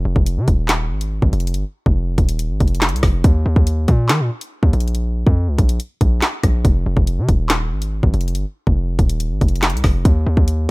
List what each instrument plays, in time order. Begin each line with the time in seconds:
0.05 808-style bass F1
0.16 808-style bass F1, kick
0.26 closed hi-hat
0.37 808-style bass C3
0.48 808-style bass D#1, kick, closed hi-hat
0.68 snare, clap, closed hi-hat
0.90 808-style bass G#1
1.01 closed hi-hat
1.22 808-style bass G#1, kick
1.33 808-style bass F1, closed hi-hat
1.40 closed hi-hat
1.47 closed hi-hat
1.54 808-style bass G1, closed hi-hat
1.86 808-style bass F1, kick
2.18 808-style bass D#1, kick, closed hi-hat
2.29 closed hi-hat
2.39 closed hi-hat
2.50 808-style bass G#1
2.60 808-style bass F1, kick, closed hi-hat
2.68 closed hi-hat
2.75 closed hi-hat
2.81 snare, clap, closed hi-hat
2.89 808-style bass C2, closed hi-hat
2.96 closed hi-hat
3.03 808-style bass F1, kick, cross-stick, snare, open hi-hat
3.24 808-style bass D#2, kick, closed hi-hat
3.46 808-style bass D#2
3.56 808-style bass D#2, kick
3.67 closed hi-hat
3.88 808-style bass A#2, kick, closed hi-hat
4.09 808-style bass D#3, snare, clap, closed hi-hat
4.20 808-style bass A#2
4.41 closed hi-hat
4.63 808-style bass D#2, kick
4.73 808-style bass A#1, closed hi-hat
4.80 closed hi-hat
4.88 closed hi-hat
4.95 closed hi-hat
5.27 808-style bass F2, kick
5.48 808-style bass C#2
5.58 808-style bass A#1, kick, closed hi-hat
5.69 closed hi-hat
5.80 closed hi-hat
6.01 808-style bass A#1, kick, closed hi-hat
6.22 snare, clap
6.43 808-style bass A#1, kick, cross-stick, closed hi-hat
6.65 808-style bass F1, kick, closed hi-hat
6.86 808-style bass F1
6.97 808-style bass F1, kick
7.07 closed hi-hat
7.18 808-style bass C3
7.29 808-style bass D#1, kick, closed hi-hat
7.49 snare, clap, closed hi-hat
7.71 808-style bass G#1
7.82 closed hi-hat
8.03 808-style bass G#1, kick
8.14 808-style bass F1, closed hi-hat
8.21 closed hi-hat
8.28 closed hi-hat
8.35 808-style bass G1, closed hi-hat
8.67 808-style bass F1, kick
8.99 808-style bass D#1, kick, closed hi-hat
9.10 closed hi-hat
9.20 closed hi-hat
9.31 808-style bass G#1
9.41 808-style bass F1, kick, closed hi-hat
9.48 closed hi-hat
9.56 closed hi-hat
9.62 snare, clap, closed hi-hat
9.70 808-style bass C2, closed hi-hat
9.77 closed hi-hat
9.84 808-style bass F1, kick, cross-stick, snare, open hi-hat
10.05 808-style bass D#2, kick, closed hi-hat
10.26 808-style bass D#2
10.37 808-style bass D#2, kick
10.48 closed hi-hat